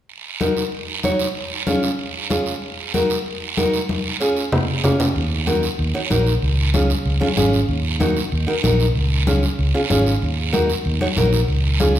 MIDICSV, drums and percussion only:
0, 0, Header, 1, 2, 480
1, 0, Start_track
1, 0, Key_signature, -6, "minor"
1, 0, Tempo, 316456
1, 133, Time_signature, 4, 2, 24, 8
1, 18194, End_track
2, 0, Start_track
2, 0, Title_t, "Drums"
2, 142, Note_on_c, 9, 74, 53
2, 293, Note_off_c, 9, 74, 0
2, 617, Note_on_c, 9, 73, 56
2, 618, Note_on_c, 9, 63, 69
2, 769, Note_off_c, 9, 63, 0
2, 769, Note_off_c, 9, 73, 0
2, 860, Note_on_c, 9, 73, 59
2, 1012, Note_off_c, 9, 73, 0
2, 1095, Note_on_c, 9, 74, 66
2, 1247, Note_off_c, 9, 74, 0
2, 1568, Note_on_c, 9, 73, 66
2, 1574, Note_on_c, 9, 63, 73
2, 1720, Note_off_c, 9, 73, 0
2, 1726, Note_off_c, 9, 63, 0
2, 1812, Note_on_c, 9, 73, 65
2, 1964, Note_off_c, 9, 73, 0
2, 2051, Note_on_c, 9, 74, 60
2, 2203, Note_off_c, 9, 74, 0
2, 2530, Note_on_c, 9, 63, 70
2, 2530, Note_on_c, 9, 73, 55
2, 2681, Note_off_c, 9, 73, 0
2, 2682, Note_off_c, 9, 63, 0
2, 2775, Note_on_c, 9, 73, 55
2, 2927, Note_off_c, 9, 73, 0
2, 3018, Note_on_c, 9, 74, 62
2, 3170, Note_off_c, 9, 74, 0
2, 3494, Note_on_c, 9, 73, 71
2, 3496, Note_on_c, 9, 63, 71
2, 3646, Note_off_c, 9, 73, 0
2, 3648, Note_off_c, 9, 63, 0
2, 3732, Note_on_c, 9, 73, 57
2, 3883, Note_off_c, 9, 73, 0
2, 3974, Note_on_c, 9, 74, 58
2, 4126, Note_off_c, 9, 74, 0
2, 4459, Note_on_c, 9, 73, 63
2, 4463, Note_on_c, 9, 63, 72
2, 4611, Note_off_c, 9, 73, 0
2, 4615, Note_off_c, 9, 63, 0
2, 4704, Note_on_c, 9, 73, 62
2, 4855, Note_off_c, 9, 73, 0
2, 4947, Note_on_c, 9, 74, 70
2, 5099, Note_off_c, 9, 74, 0
2, 5420, Note_on_c, 9, 63, 76
2, 5424, Note_on_c, 9, 73, 63
2, 5572, Note_off_c, 9, 63, 0
2, 5575, Note_off_c, 9, 73, 0
2, 5665, Note_on_c, 9, 73, 59
2, 5816, Note_off_c, 9, 73, 0
2, 5904, Note_on_c, 9, 63, 69
2, 5904, Note_on_c, 9, 74, 60
2, 6055, Note_off_c, 9, 74, 0
2, 6056, Note_off_c, 9, 63, 0
2, 6382, Note_on_c, 9, 73, 62
2, 6533, Note_off_c, 9, 73, 0
2, 6622, Note_on_c, 9, 73, 56
2, 6773, Note_off_c, 9, 73, 0
2, 6861, Note_on_c, 9, 74, 64
2, 6862, Note_on_c, 9, 64, 92
2, 7013, Note_off_c, 9, 64, 0
2, 7013, Note_off_c, 9, 74, 0
2, 7337, Note_on_c, 9, 73, 68
2, 7340, Note_on_c, 9, 64, 81
2, 7489, Note_off_c, 9, 73, 0
2, 7492, Note_off_c, 9, 64, 0
2, 7581, Note_on_c, 9, 73, 63
2, 7582, Note_on_c, 9, 64, 61
2, 7733, Note_off_c, 9, 73, 0
2, 7734, Note_off_c, 9, 64, 0
2, 7825, Note_on_c, 9, 74, 65
2, 7977, Note_off_c, 9, 74, 0
2, 8300, Note_on_c, 9, 63, 74
2, 8300, Note_on_c, 9, 73, 61
2, 8451, Note_off_c, 9, 63, 0
2, 8451, Note_off_c, 9, 73, 0
2, 8539, Note_on_c, 9, 73, 60
2, 8691, Note_off_c, 9, 73, 0
2, 8783, Note_on_c, 9, 74, 67
2, 8935, Note_off_c, 9, 74, 0
2, 9259, Note_on_c, 9, 63, 71
2, 9266, Note_on_c, 9, 73, 72
2, 9411, Note_off_c, 9, 63, 0
2, 9417, Note_off_c, 9, 73, 0
2, 9503, Note_on_c, 9, 73, 59
2, 9655, Note_off_c, 9, 73, 0
2, 9744, Note_on_c, 9, 74, 60
2, 9896, Note_off_c, 9, 74, 0
2, 10220, Note_on_c, 9, 73, 59
2, 10223, Note_on_c, 9, 63, 76
2, 10372, Note_off_c, 9, 73, 0
2, 10374, Note_off_c, 9, 63, 0
2, 10468, Note_on_c, 9, 73, 67
2, 10619, Note_off_c, 9, 73, 0
2, 10703, Note_on_c, 9, 74, 71
2, 10854, Note_off_c, 9, 74, 0
2, 10946, Note_on_c, 9, 63, 65
2, 11097, Note_off_c, 9, 63, 0
2, 11183, Note_on_c, 9, 63, 74
2, 11183, Note_on_c, 9, 73, 71
2, 11334, Note_off_c, 9, 63, 0
2, 11335, Note_off_c, 9, 73, 0
2, 11427, Note_on_c, 9, 73, 60
2, 11579, Note_off_c, 9, 73, 0
2, 11660, Note_on_c, 9, 74, 65
2, 11811, Note_off_c, 9, 74, 0
2, 12141, Note_on_c, 9, 73, 56
2, 12145, Note_on_c, 9, 63, 80
2, 12292, Note_off_c, 9, 73, 0
2, 12296, Note_off_c, 9, 63, 0
2, 12385, Note_on_c, 9, 73, 58
2, 12536, Note_off_c, 9, 73, 0
2, 12622, Note_on_c, 9, 74, 69
2, 12773, Note_off_c, 9, 74, 0
2, 13103, Note_on_c, 9, 63, 71
2, 13107, Note_on_c, 9, 73, 75
2, 13255, Note_off_c, 9, 63, 0
2, 13258, Note_off_c, 9, 73, 0
2, 13345, Note_on_c, 9, 73, 62
2, 13496, Note_off_c, 9, 73, 0
2, 13582, Note_on_c, 9, 74, 56
2, 13733, Note_off_c, 9, 74, 0
2, 14060, Note_on_c, 9, 63, 74
2, 14062, Note_on_c, 9, 73, 57
2, 14212, Note_off_c, 9, 63, 0
2, 14214, Note_off_c, 9, 73, 0
2, 14303, Note_on_c, 9, 73, 59
2, 14454, Note_off_c, 9, 73, 0
2, 14545, Note_on_c, 9, 74, 62
2, 14696, Note_off_c, 9, 74, 0
2, 15019, Note_on_c, 9, 63, 74
2, 15022, Note_on_c, 9, 73, 71
2, 15171, Note_off_c, 9, 63, 0
2, 15174, Note_off_c, 9, 73, 0
2, 15265, Note_on_c, 9, 73, 61
2, 15417, Note_off_c, 9, 73, 0
2, 15504, Note_on_c, 9, 74, 63
2, 15656, Note_off_c, 9, 74, 0
2, 15981, Note_on_c, 9, 73, 67
2, 15985, Note_on_c, 9, 63, 77
2, 16133, Note_off_c, 9, 73, 0
2, 16136, Note_off_c, 9, 63, 0
2, 16223, Note_on_c, 9, 73, 63
2, 16374, Note_off_c, 9, 73, 0
2, 16459, Note_on_c, 9, 74, 67
2, 16610, Note_off_c, 9, 74, 0
2, 16697, Note_on_c, 9, 63, 67
2, 16848, Note_off_c, 9, 63, 0
2, 16939, Note_on_c, 9, 63, 81
2, 16941, Note_on_c, 9, 73, 71
2, 17091, Note_off_c, 9, 63, 0
2, 17093, Note_off_c, 9, 73, 0
2, 17180, Note_on_c, 9, 73, 68
2, 17332, Note_off_c, 9, 73, 0
2, 17419, Note_on_c, 9, 74, 61
2, 17571, Note_off_c, 9, 74, 0
2, 17893, Note_on_c, 9, 73, 63
2, 17896, Note_on_c, 9, 63, 77
2, 18045, Note_off_c, 9, 73, 0
2, 18048, Note_off_c, 9, 63, 0
2, 18133, Note_on_c, 9, 73, 63
2, 18194, Note_off_c, 9, 73, 0
2, 18194, End_track
0, 0, End_of_file